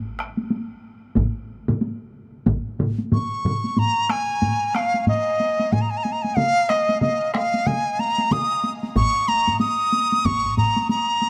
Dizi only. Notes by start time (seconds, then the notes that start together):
3.13 C#6
3.79 A#5
4.11 G#5
4.75 F5
5.08 D#5
5.72 G#5
5.81 A#5
5.90 G#5
5.97 A#5
6.03 G#5
6.12 A#5
6.22 G#5
6.37 F5
6.69 D#5
7.02 D#5
7.34 F5
7.67 G#5
8.00 A#5
8.32 D#6
8.96 C#6
9.28 A#5
9.60 D#6
10.25 C#6
10.58 A#5
10.90 A#5